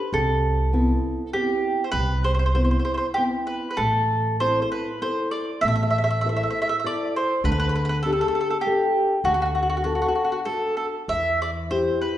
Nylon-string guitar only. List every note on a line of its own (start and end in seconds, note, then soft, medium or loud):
0.13 0.71 C3 medium
0.73 1.21 B3 medium
0.73 1.21 C4 soft
0.73 1.21 E4 medium
1.34 1.82 B3 soft
1.34 1.82 C4 soft
1.34 1.83 E4 medium
1.94 2.53 C3 medium
2.54 3.04 B3 medium
2.54 3.04 C4 soft
2.54 3.05 E4 medium
3.18 3.67 B3 soft
3.18 3.67 C4 soft
3.18 3.67 E4 soft
3.80 4.39 A3 medium
4.41 4.90 C4 medium
4.41 4.90 E4 medium
4.41 4.90 A4 medium
5.02 5.50 E4 soft
5.02 5.51 A4 soft
5.02 5.51 C5 medium
5.64 6.22 A3 medium
6.25 6.72 E4 medium
6.25 6.73 A4 medium
6.25 6.73 C5 medium
6.84 7.32 E4 medium
6.84 7.32 A4 medium
6.84 7.33 C5 soft
7.44 8.02 D3 medium
8.06 8.53 D4 medium
8.06 8.53 G4 medium
8.06 8.53 A4 medium
8.66 9.13 D4 soft
8.66 9.13 G4 medium
8.66 9.14 A4 medium
9.25 9.83 D3 medium
9.85 10.34 D4 medium
9.85 10.34 F#4 soft
9.85 10.35 A4 medium
10.46 10.96 D4 soft
10.46 10.96 F#4 soft
10.46 10.96 A4 soft
11.10 11.69 E3 medium
11.70 12.18 E4 medium
11.70 12.18 G4 soft